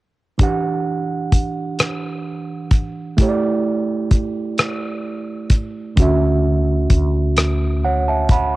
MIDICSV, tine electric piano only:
0, 0, Header, 1, 2, 480
1, 0, Start_track
1, 0, Tempo, 930233
1, 202, Time_signature, 6, 3, 24, 8
1, 4418, End_track
2, 0, Start_track
2, 0, Title_t, "Tine electric piano"
2, 0, Program_c, 0, 4
2, 195, Note_on_c, 0, 52, 56
2, 205, Note_on_c, 0, 62, 53
2, 213, Note_on_c, 0, 67, 52
2, 223, Note_on_c, 0, 78, 59
2, 287, Control_c, 0, 64, 127
2, 1618, Note_off_c, 0, 52, 0
2, 1623, Note_off_c, 0, 62, 0
2, 1627, Note_off_c, 0, 67, 0
2, 1632, Note_off_c, 0, 78, 0
2, 1635, Note_on_c, 0, 57, 59
2, 1645, Note_on_c, 0, 64, 55
2, 1650, Control_c, 0, 64, 0
2, 1654, Note_on_c, 0, 67, 58
2, 1663, Note_on_c, 0, 73, 54
2, 1686, Note_off_c, 0, 73, 0
2, 1697, Note_on_c, 0, 74, 71
2, 1740, Control_c, 0, 64, 127
2, 3058, Note_off_c, 0, 57, 0
2, 3063, Note_off_c, 0, 64, 0
2, 3068, Note_off_c, 0, 67, 0
2, 3077, Note_on_c, 0, 50, 63
2, 3086, Note_on_c, 0, 61, 58
2, 3089, Note_off_c, 0, 74, 0
2, 3090, Control_c, 0, 64, 0
2, 3095, Note_on_c, 0, 66, 59
2, 3106, Note_on_c, 0, 76, 70
2, 3192, Control_c, 0, 64, 127
2, 4035, Note_off_c, 0, 76, 0
2, 4049, Note_on_c, 0, 78, 55
2, 4052, Note_on_c, 0, 73, 40
2, 4160, Note_off_c, 0, 78, 0
2, 4161, Note_off_c, 0, 73, 0
2, 4170, Note_on_c, 0, 81, 59
2, 4174, Note_on_c, 0, 76, 44
2, 4281, Note_off_c, 0, 81, 0
2, 4283, Note_off_c, 0, 76, 0
2, 4291, Note_on_c, 0, 83, 58
2, 4294, Note_on_c, 0, 78, 43
2, 4401, Note_off_c, 0, 83, 0
2, 4402, Note_off_c, 0, 78, 0
2, 4418, Note_off_c, 0, 50, 0
2, 4418, Note_off_c, 0, 61, 0
2, 4418, Note_off_c, 0, 66, 0
2, 4418, End_track
0, 0, End_of_file